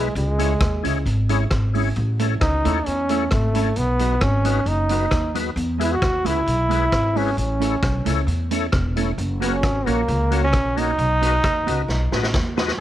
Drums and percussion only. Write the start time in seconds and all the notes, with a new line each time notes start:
0.16 closed hi-hat
0.39 closed hi-hat
0.61 kick, cross-stick, closed hi-hat
0.85 closed hi-hat
1.06 closed hi-hat
1.29 closed hi-hat
1.51 kick, cross-stick, closed hi-hat
1.75 open hi-hat
1.96 closed hi-hat
2.19 closed hi-hat
2.41 kick, cross-stick, closed hi-hat
2.65 closed hi-hat
2.86 closed hi-hat
3.09 closed hi-hat
3.31 kick, cross-stick, closed hi-hat
3.55 closed hi-hat
3.76 closed hi-hat
3.99 closed hi-hat
4.21 kick, cross-stick, closed hi-hat
4.45 closed hi-hat
4.66 closed hi-hat
4.89 closed hi-hat
5.11 kick, cross-stick, closed hi-hat
5.35 closed hi-hat
5.57 closed hi-hat
5.81 closed hi-hat
6.02 kick, cross-stick, closed hi-hat
6.26 closed hi-hat
6.47 closed hi-hat
6.71 closed hi-hat
6.92 kick, cross-stick, closed hi-hat
7.17 open hi-hat
7.38 closed hi-hat
7.61 closed hi-hat
7.83 kick, cross-stick, closed hi-hat
8.06 closed hi-hat
8.28 closed hi-hat
8.51 closed hi-hat
8.72 kick, cross-stick, closed hi-hat
8.97 closed hi-hat
9.18 closed hi-hat
9.42 closed hi-hat
9.63 kick, cross-stick, closed hi-hat
9.87 closed hi-hat
10.08 closed hi-hat
10.32 closed hi-hat
10.53 kick, cross-stick, closed hi-hat
10.77 closed hi-hat
10.99 closed hi-hat
11.22 closed hi-hat
11.44 kick, cross-stick, closed hi-hat
11.68 closed hi-hat
11.89 snare
12.12 snare
12.23 snare
12.34 kick, snare
12.57 snare
12.68 snare